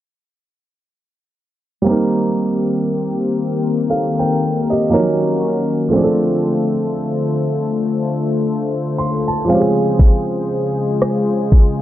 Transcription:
1.82 analog synth pad D#3 A#3 C4 G4 A#4, grand piano G3 A#3
1.86 grand piano C4 D#4
1.91 grand piano A#4
3.90 grand piano A4 F5
4.19 grand piano A#4 G5
4.70 grand piano G4 D#5
4.89 grand piano F3 A#3 C#4 D#4, analog synth pad C#4 F#4
4.94 grand piano F#3 A#4
5.89 grand piano F3 A3, analog synth pad A3 A4
5.93 analog synth pad D3 F4 C5, grand piano C4 D4
5.98 grand piano G#4
6.04 grand piano A4
8.98 grand piano C6
9.28 grand piano A5
9.45 analog synth pad C#3 G#3 G#4, grand piano F3 G#3
9.49 grand piano C4 C#4 F5
9.54 grand piano G4
9.60 grand piano G#4
9.99 kick
11.02 cross-stick
11.52 kick

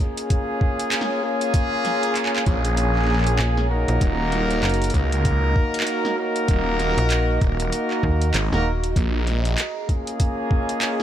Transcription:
Already playing: ambient pad G#4 C#5 D#5 A#5
0.00 horn section A#3 C#4 F4 G#4
0.17 closed hi-hat
0.30 kick, closed hi-hat
0.61 kick
0.79 closed hi-hat
0.92 clap, closed hi-hat
1.01 snare
1.23 horn section A#3 C#4 F4 G#4
1.41 closed hi-hat
1.54 kick, closed hi-hat
1.85 snare, closed hi-hat
2.03 closed hi-hat
2.16 clap, closed hi-hat
2.26 clap
2.36 clap
2.46 detuned saw bass A#1, horn section A#3 C#4 F4 G#4, kick, closed hi-hat
2.65 closed hi-hat
2.77 closed hi-hat
2.96 clap
2.99 clap
3.02 clap
3.05 clap
3.08 clap
3.13 clap
3.17 clap
3.22 clap
3.27 closed hi-hat
3.39 fm bass A#1, clap
3.57 snare
3.70 horn section A#3 D#4 F#4 A#4
3.88 fm bass A#1, closed hi-hat
4.01 detuned saw bass D#1, ambient pad F#4, kick, closed hi-hat
4.32 snare, closed hi-hat
4.51 closed hi-hat
4.63 fm bass F#1, clap, closed hi-hat
4.69 closed hi-hat
4.74 closed hi-hat
4.82 closed hi-hat
4.84 closed hi-hat
4.90 detuned saw bass C#2, ambient pad D#5, closed hi-hat
4.94 horn section A#3 D#4 F#4 A#4, kick, closed hi-hat
5.12 closed hi-hat
5.25 kick, closed hi-hat
5.56 kick
5.74 closed hi-hat
5.80 clap
5.87 closed hi-hat
6.05 snare
6.18 horn section A#3 D#4 F#4 A#4
6.36 closed hi-hat
6.48 detuned saw bass D#1, kick, closed hi-hat
6.79 snare, closed hi-hat
6.98 fm bass A#1, closed hi-hat
7.10 clap, closed hi-hat
7.41 detuned saw bass D#1, horn section A#3 D#4 F#4 A#4, kick, closed hi-hat
7.60 closed hi-hat
7.72 closed hi-hat
7.91 clap
8.03 fm bass D#2, kick
8.22 closed hi-hat
8.34 detuned saw bass G#1, clap, closed hi-hat
8.52 fm bass D#1, horn section A#3 D#4 F#4 A#4, snare
8.84 closed hi-hat
8.96 detuned saw bass A#1, ambient pad G#4, kick, closed hi-hat
9.27 ambient pad A#5, snare, closed hi-hat
9.45 closed hi-hat
9.58 clap, closed hi-hat
9.89 horn section A#3 C#4 F4 G#4, ambient pad C#5, kick, closed hi-hat
10.07 closed hi-hat
10.20 kick, closed hi-hat
10.51 kick
10.69 closed hi-hat
10.82 clap, closed hi-hat
11.00 snare

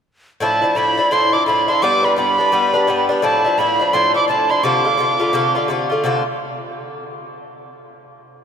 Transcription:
0.40 bouzouki A2 F3 D4 E4, tin whistle A5
0.62 bouzouki F3 D4 E4
0.75 bouzouki A2 F3 D4 E4, tin whistle B5
0.97 bouzouki F3 D4 E4
1.11 bouzouki A2 F3 D4 E4, tin whistle C6
1.33 bouzouki F3 D4 E4, tin whistle D6
1.46 bouzouki A2 F3 D4 E4, tin whistle B5
1.68 bouzouki F3 D4 E4, tin whistle C6
1.82 bouzouki G2 G3 B3 D4, tin whistle D6
2.03 bouzouki G3 B3 D4, tin whistle B5
2.16 bouzouki G2 G3 B3 D4, tin whistle B5
2.38 bouzouki G3 B3 D4
2.52 bouzouki G2 G3 B3 D4
2.74 bouzouki G3 B3 D4
2.87 bouzouki G2 G3 B3 D4
3.09 bouzouki G3 B3 D4
3.22 bouzouki A2 F3 D4 E4, tin whistle A5
3.45 bouzouki F3 D4 E4
3.58 bouzouki A2 F3 D4 E4, tin whistle B5
3.79 bouzouki F3 D4 E4
3.93 bouzouki A2 F3 D4 E4, tin whistle C6
4.14 bouzouki F3 D4 E4, tin whistle D6
4.28 bouzouki A2 F3 D4 E4, tin whistle A5
4.50 bouzouki F3 D4 E4, tin whistle C6
4.63 bouzouki C3 D3 A3 F4, tin whistle D6
4.85 bouzouki D3 A3 F4
4.97 bouzouki C3 D3 A3 F4
5.19 bouzouki D3 A3 F4
5.33 bouzouki C3 D3 A3 F4
5.55 bouzouki D3 A3 F4
5.68 bouzouki C3 D3 A3 F4
5.90 bouzouki D3 A3 F4
6.04 bouzouki C3 D3 A3 F4

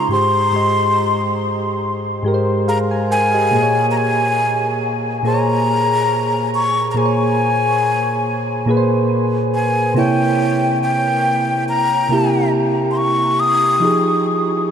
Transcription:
Already playing: synth keys C#3 G#3 D#4 F4 C5, flute A#5
0.09 synth keys G#2 G#3 G4, flute C6
0.13 synth keys C5
0.51 synth keys G#2 G#3 G4
0.56 synth keys D#5
2.23 synth keys G#2 G#3 G4
2.28 synth keys A#4
2.34 synth keys C5
2.68 synth keys G#4 F5, flute A#5
2.91 synth keys C5 G#5
3.11 synth keys A#4 G5, flute G#5
3.34 synth keys G4 D#5
3.51 synth keys A#2 A#3 G#4
3.56 synth keys C5
3.63 synth keys C#5
3.91 flute A#5
3.98 flute G#5
5.23 synth keys A#2 A#3 G#4, flute A#5
5.28 synth keys C5
5.34 synth keys C#5
6.55 flute C#6
6.91 synth keys A#2, flute A#5
6.96 synth keys A#3 G#4 C5, flute G#5
7.05 synth keys C#5
8.66 synth keys A#2 A#3 G#4
8.70 synth keys B4
8.77 synth keys C5
9.55 flute G#5
9.94 synth keys C3 A#3 E4, flute G5
9.99 synth keys C#5
10.83 flute G5
11.69 flute A#5
12.09 synth keys C3 A#3 E4
12.14 synth keys G4
12.91 flute C6
12.97 flute C#6
13.40 flute D#6
13.80 synth keys F3 D#4 G4
13.85 synth keys G#4

